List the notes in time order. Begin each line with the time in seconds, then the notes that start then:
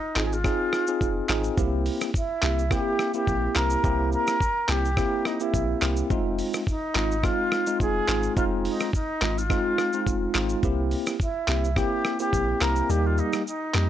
Already playing: D#4
0.16 G#1 C4 D#4 F4 G#4, cross-stick, clap, shaker
0.25 G#4
0.33 F4, shaker
0.44 C4 D#4 F4 G#4, kick, cross-stick, shaker
0.73 cross-stick, shaker
0.87 C4 D#4 F4 G#4, shaker
1.01 F1, kick, shaker
1.29 G#1 C4 D#4 F4 G#4, cross-stick, clap, shaker
1.44 shaker
1.57 C2 A#3 C4 E4 G4, kick, shaker
1.86 open hi-hat, shaker
2.01 cross-stick, shaker
2.14 E4, kick, shaker
2.42 C2 A#3 C4 E4 G4, cross-stick, clap, shaker
2.59 shaker
2.70 A#3 C4 E4 G4, kick, cross-stick, shaker
2.99 cross-stick, shaker
3.14 A#3 C4 E4 G4, shaker
3.27 A#1, kick, shaker
3.55 C2 A#3 C4 E4 G4 A#4, cross-stick, clap, shaker
3.70 shaker
3.84 C2 A#3 C4 E4 G4, kick, shaker
4.12 A#4, shaker
4.27 cross-stick, shaker
4.40 kick, shaker
4.68 C2 A#3 C4 E4 G4, cross-stick, clap, shaker
4.85 shaker
4.97 A#3 C4 E4 G4, kick, cross-stick, shaker
5.25 D#4, cross-stick, shaker
5.40 A#3 C4 E4 G4, shaker
5.54 A#1, kick, shaker
5.81 C2 A#3 C4 E4 G4, cross-stick, clap, shaker
5.96 shaker
6.10 F1 G#3 C4 D#4 F4, kick, shaker
6.39 open hi-hat, shaker
6.53 cross-stick, shaker
6.67 D#4, kick, shaker
6.95 G#1 G#3 C4 D#4 F4, cross-stick, clap, shaker
7.11 shaker
7.23 G#3 C4 D#4 F4, kick, cross-stick, shaker
7.52 cross-stick, shaker
7.66 G#3 C4 D#4 F4, shaker
7.80 F1 G#4, kick, shaker
8.08 G#1 G#3 C4 D#4 F4, cross-stick, clap, shaker
8.23 shaker
8.36 F1 G#3 C4 D#4 F4, kick, shaker
8.65 D#4, open hi-hat, shaker
8.80 cross-stick, shaker
8.93 D#4, kick, shaker
9.22 G#1 G#3 C4 D#4 F4, cross-stick, clap, shaker
9.38 F4, shaker
9.50 G#3 C4 D#4 F4, kick, cross-stick, shaker
9.78 cross-stick, shaker
9.93 G#3 C4 D#4 F4, shaker
10.06 F1, kick, shaker
10.34 G#1 G#3 C4 D#4 F4, cross-stick, clap, shaker
10.49 shaker
10.63 C2 A#3 C4 E4 G4, kick, shaker
10.91 open hi-hat, shaker
11.06 cross-stick, shaker
11.20 E4, kick, shaker
11.48 C2 A#3 C4 E4 G4, cross-stick, clap, shaker
11.64 shaker
11.76 A#3 C4 E4 G4, kick, cross-stick, shaker
12.05 cross-stick, shaker
12.19 A#3 C4 E4 G4, shaker
12.33 A#1, kick, shaker
12.61 C2 A#3 C4 E4 G4 A#4, cross-stick, clap, shaker
12.76 shaker
12.89 D#2 G3 A#3 D#4 G4, shaker
13.06 F4
13.18 D#4, shaker
13.33 cross-stick, shaker
13.47 D#4, shaker
13.74 F2 G3 A#3 D#4 G4, cross-stick, clap, shaker